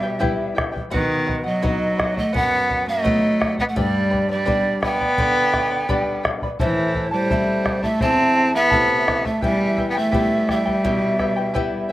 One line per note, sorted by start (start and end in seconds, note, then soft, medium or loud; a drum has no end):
0.00 0.19 B2 medium
0.00 0.57 G3 medium
0.00 0.18 E4 soft
0.00 0.19 B4 medium
0.00 0.57 E5 medium
0.00 0.19 G5 medium
0.19 0.77 G3 medium
0.19 0.78 B3 soft
0.19 0.54 E4 loud
0.19 0.78 E4 soft
0.19 0.56 G4 medium
0.19 0.55 B4 loud
0.19 0.54 E5 medium
0.19 0.55 G5 loud
0.19 bombo low medium
0.55 0.73 E4 medium
0.55 0.72 B4 medium
0.55 0.73 E5 medium
0.55 0.71 G5 medium
0.55 bombo rim medium
0.55 bombo low medium
0.72 0.90 E4 soft
0.72 0.89 B4 soft
0.72 0.91 G5 soft
0.72 bombo low medium
0.90 1.60 B2 medium
0.90 1.42 D#3 loud
0.90 1.25 B4 medium
0.90 1.42 B4 medium
0.90 1.25 D#5 medium
0.90 1.26 F#5 medium
0.90 bombo low medium
1.26 1.44 B4 medium
1.26 1.44 D#5 medium
1.26 1.43 F#5 medium
1.26 bombo low medium
1.44 2.18 F#3 medium
1.44 1.62 D#5 soft
1.44 2.18 D#5 medium
1.44 1.62 F#5 medium
1.62 2.19 F#3 soft
1.62 2.20 B3 soft
1.62 2.20 D#4 medium
1.62 1.96 B4 medium
1.62 1.96 D#5 medium
1.62 1.97 F#5 medium
1.62 bombo low medium
1.97 2.15 B4 medium
1.97 2.14 D#5 soft
1.97 2.12 F#5 medium
1.97 bombo rim medium
1.97 bombo low soft
2.13 2.34 A3 medium
2.13 2.32 D#5 soft
2.13 2.32 F#5 medium
2.13 bombo low soft
2.18 2.35 D#5 medium
2.32 3.03 F#2 medium
2.32 2.84 B3 loud
2.32 2.66 B4 medium
2.32 2.67 D#5 medium
2.32 2.68 F#5 medium
2.32 2.84 F#5 loud
2.32 bombo low medium
2.68 2.86 B4 medium
2.68 2.85 D#5 medium
2.68 2.83 F#5 medium
2.68 bombo low soft
2.85 3.03 D#5 soft
2.85 3.03 F#5 soft
2.89 3.55 A3 loud
2.89 3.55 D#5 medium
3.04 3.61 F#3 medium
3.04 3.62 B3 soft
3.04 3.62 D#4 medium
3.04 3.38 B4 medium
3.04 3.38 D#5 medium
3.04 3.39 F#5 medium
3.04 bombo low medium
3.39 3.57 B4 soft
3.39 3.57 D#5 medium
3.39 3.56 F#5 medium
3.39 bombo rim soft
3.39 bombo low soft
3.58 3.65 B3 medium
3.58 3.76 D#5 soft
3.58 3.75 F#5 soft
3.58 3.64 F#5 medium
3.58 bombo low soft
3.69 3.78 A3 medium
3.69 3.79 F#5 medium
3.75 4.45 G2 medium
3.75 4.30 G3 medium
3.75 4.11 G4 medium
3.75 4.09 B4 medium
3.75 4.10 D5 medium
3.75 4.30 D5 medium
3.75 4.09 G5 medium
3.75 4.10 B5 medium
3.75 bombo low medium
4.10 4.28 B4 medium
4.10 4.28 D5 medium
4.10 4.28 G5 medium
4.10 4.27 B5 medium
4.10 bombo low soft
4.28 4.80 G3 medium
4.28 4.44 B4 soft
4.28 4.44 D5 medium
4.28 4.79 D5 medium
4.28 4.45 B5 soft
4.45 5.03 G3 medium
4.45 5.04 B3 soft
4.45 5.04 D4 medium
4.45 4.81 G4 medium
4.45 4.81 B4 medium
4.45 4.82 D5 medium
4.45 4.81 G5 medium
4.45 4.82 B5 medium
4.45 bombo low medium
4.82 6.21 B3 loud
4.82 5.00 B4 soft
4.82 5.00 D5 medium
4.82 5.00 G5 soft
4.82 6.21 G5 medium
4.82 4.99 B5 medium
4.82 bombo rim medium
4.82 bombo low soft
5.00 5.18 B4 soft
5.00 5.18 D5 medium
5.00 5.18 B5 medium
5.00 bombo low soft
5.18 5.87 D3 medium
5.18 5.54 G4 medium
5.18 5.53 B4 medium
5.18 5.53 D5 medium
5.18 5.52 G5 medium
5.18 5.54 B5 medium
5.18 bombo low medium
5.54 5.71 B4 medium
5.54 5.70 D5 medium
5.54 5.71 G5 medium
5.54 5.70 B5 medium
5.54 bombo rim soft
5.54 bombo low soft
5.71 5.88 B4 soft
5.71 5.89 D5 soft
5.71 5.88 B5 medium
5.89 6.45 G3 soft
5.89 6.46 B3 soft
5.89 6.46 D4 soft
5.89 6.24 G4 medium
5.89 6.23 B4 medium
5.89 6.24 D5 medium
5.89 6.22 G5 medium
5.89 6.24 B5 loud
5.89 bombo low medium
6.23 6.42 B4 soft
6.23 6.42 D5 medium
6.23 6.41 G5 medium
6.23 6.42 B5 medium
6.23 bombo rim medium
6.23 bombo low soft
6.42 6.59 B4 soft
6.42 6.60 D5 soft
6.42 6.60 B5 soft
6.42 bombo low medium
6.59 7.29 A2 medium
6.59 7.09 E3 medium
6.59 6.94 E4 medium
6.59 6.95 A4 medium
6.59 6.95 C5 medium
6.59 7.09 C5 medium
6.59 6.93 E5 medium
6.59 6.95 A5 medium
6.59 bombo low medium
6.94 7.12 E4 medium
6.94 7.11 A4 medium
6.94 7.12 E5 medium
6.94 7.10 A5 medium
6.94 bombo low medium
7.11 7.84 G3 medium
7.11 7.29 E4 soft
7.11 7.30 A4 medium
7.11 7.85 C5 medium
7.11 7.30 A5 soft
7.30 7.88 A3 medium
7.30 7.88 C4 soft
7.30 7.63 E4 medium
7.30 7.89 E4 medium
7.30 7.64 A4 medium
7.30 7.66 C5 medium
7.30 7.63 E5 medium
7.30 7.64 A5 medium
7.30 bombo low medium
7.64 7.83 E4 medium
7.64 7.82 A4 medium
7.64 7.83 E5 soft
7.64 7.82 A5 medium
7.64 bombo rim soft
7.64 bombo low medium
7.82 8.03 A3 medium
7.82 8.00 E4 soft
7.82 8.01 A4 soft
7.82 8.03 E5 medium
7.82 8.01 A5 medium
7.82 bombo low soft
8.01 8.71 E2 medium
8.01 8.54 C4 loud
8.01 8.35 E4 medium
8.01 8.36 A4 medium
8.01 8.36 C5 medium
8.01 8.34 E5 medium
8.01 8.36 A5 medium
8.01 8.55 A5 medium
8.01 bombo low medium
8.36 8.53 E4 medium
8.36 8.52 A4 medium
8.36 8.54 E5 medium
8.36 8.52 A5 medium
8.53 9.26 B3 loud
8.53 8.69 E4 soft
8.53 8.69 A4 soft
8.53 9.26 E5 medium
8.53 8.69 A5 soft
8.70 9.30 C3 soft
8.70 9.29 A3 soft
8.70 9.07 E4 medium
8.70 9.07 A4 medium
8.70 9.05 E5 medium
8.70 9.07 A5 medium
8.70 bombo low medium
8.74 9.30 E4 medium
9.07 9.25 E4 medium
9.07 9.24 A4 medium
9.07 9.25 E5 soft
9.07 9.23 A5 medium
9.07 bombo rim medium
9.07 bombo low medium
9.24 9.42 A3 medium
9.24 9.41 E4 soft
9.24 9.42 A4 soft
9.24 9.44 E5 medium
9.24 9.42 A5 soft
9.24 bombo low soft
9.41 10.12 E2 medium
9.41 9.86 G3 loud
9.41 9.76 E4 medium
9.41 9.78 G4 medium
9.41 9.77 B4 medium
9.41 9.76 E5 medium
9.41 9.87 E5 medium
9.41 9.77 G5 medium
9.41 bombo low medium
9.77 9.95 E4 medium
9.77 9.95 B4 medium
9.77 9.95 E5 medium
9.77 9.94 G5 medium
9.77 bombo low soft
9.90 9.99 B3 medium
9.90 9.99 G5 medium
9.95 10.52 A3 medium
9.95 10.11 E4 soft
9.95 10.11 B4 soft
9.95 10.51 E5 medium
9.95 10.11 G5 medium
10.11 10.71 G3 medium
10.11 10.71 B3 soft
10.11 10.47 E4 medium
10.11 10.71 E4 medium
10.11 10.48 G4 medium
10.11 10.47 B4 medium
10.11 10.46 E5 medium
10.11 10.48 G5 medium
10.11 bombo low medium
10.48 11.92 G3 loud
10.48 10.65 E4 medium
10.48 10.65 B4 medium
10.48 10.66 E5 soft
10.48 11.92 E5 medium
10.48 10.64 G5 medium
10.48 bombo rim soft
10.48 bombo low soft
10.65 10.83 E4 soft
10.65 10.84 B4 medium
10.65 10.84 G5 medium
10.65 bombo low soft
10.84 11.53 B2 medium
10.84 11.18 E4 medium
10.84 11.20 G4 medium
10.84 11.19 B4 medium
10.84 11.18 E5 medium
10.84 11.19 G5 medium
10.84 bombo low medium
11.19 11.37 E4 medium
11.19 11.36 B4 medium
11.19 11.37 E5 medium
11.19 11.35 G5 medium
11.19 bombo rim soft
11.19 bombo low soft
11.36 11.53 E4 soft
11.36 11.53 B4 medium
11.36 11.54 G5 medium
11.54 11.92 G3 soft
11.54 11.92 B3 soft
11.54 11.88 E4 medium
11.54 11.92 E4 medium
11.54 11.90 G4 medium
11.54 11.88 B4 loud
11.54 11.88 E5 medium
11.54 11.89 G5 medium
11.54 bombo low medium
11.89 11.92 E5 medium